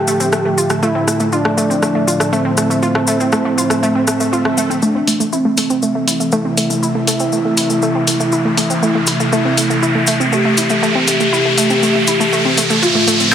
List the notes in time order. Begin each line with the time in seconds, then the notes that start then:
Already playing: A2 D3 F3 A3 G4 E5
0.07 A3, cabasa
0.20 C4, cabasa
0.32 A3, cross-stick, cabasa
0.45 A3
0.58 F4, cabasa
0.70 A3, cross-stick, cabasa
0.82 A3 E4, cabasa
0.95 C4
1.08 A3, cross-stick, cabasa
1.20 A3, cabasa
1.32 D4 F4, cabasa
1.45 A3, cross-stick
1.57 A3, cabasa
1.70 C4, cabasa
1.82 A3, cross-stick, cabasa
1.95 A3
2.07 F4, cabasa
2.20 A3, cross-stick, cabasa
2.33 A3 C4, cabasa
2.45 C4
2.57 A3, cross-stick, cabasa
2.70 A3, cabasa
2.83 F4, cabasa
2.95 A3, cross-stick
3.07 A3, cabasa
3.20 C4, cabasa
3.32 A3, cross-stick, cabasa
3.45 A3
3.58 F4, cabasa
3.70 A3, cross-stick, cabasa
3.83 A3, swell, cabasa
3.95 C4
4.07 A3, cross-stick, cabasa
4.20 A3, cabasa
4.33 F4, cabasa
4.45 A3, cross-stick
4.58 A3, cabasa
4.70 C4, cabasa
4.82 C3 E3 A3 D4 E5, riser, cabasa
4.95 C4
5.07 A3, open hi-hat, cabasa
5.20 A3, cabasa
5.33 C4 E4, cabasa
5.45 A3
5.57 A3, open hi-hat, cabasa
5.70 C4, cabasa
5.82 A3, cabasa
5.95 A3
6.07 E4, open hi-hat, cabasa
6.20 A3, cabasa
6.32 A3 E4, cabasa
6.45 C4
6.57 A3, open hi-hat, cabasa
6.70 A3, cabasa
6.83 E4, cabasa
6.95 A3
7.07 A3, open hi-hat, cabasa
7.20 C4, cabasa
7.32 A3, cabasa
7.45 A3
7.57 E4, open hi-hat, cabasa
7.70 A3, cabasa
7.82 A3, cabasa
7.95 C4
8.07 A3, open hi-hat, cabasa
8.20 A3, cabasa
8.32 E4, cabasa
8.45 A3
8.57 A3, open hi-hat, cabasa
8.70 C4, cabasa
8.83 A3 E4, cabasa
8.95 A3
9.07 E4, open hi-hat, cabasa
9.20 A3, cabasa
9.32 A3 E4, cabasa
9.45 C4
9.57 A3, open hi-hat, cabasa
9.70 A3, cabasa
9.83 E4, cabasa
9.95 A3
10.07 A3, open hi-hat, cabasa
10.20 C4, cabasa
10.33 A3 G4, cabasa
10.45 A3
10.57 E4, open hi-hat, cabasa
10.70 A3, cabasa
10.83 A3, cabasa
10.95 C4
11.08 A3, open hi-hat, cabasa
11.20 A3, cabasa
11.33 E4, cabasa
11.45 A3
11.58 A3, open hi-hat, cabasa
11.70 C4, cabasa
11.83 A3, cabasa
11.95 A3
12.07 E4, open hi-hat, cabasa
12.20 A3, cabasa
12.33 A3, cabasa
12.45 C4
12.57 A3, open hi-hat, cabasa
12.70 A3, cabasa
12.82 A2 D3 F3 F4, closed hi-hat, cabasa
12.95 A3
13.08 A3, open hi-hat, cabasa
13.20 C4, closed hi-hat, cabasa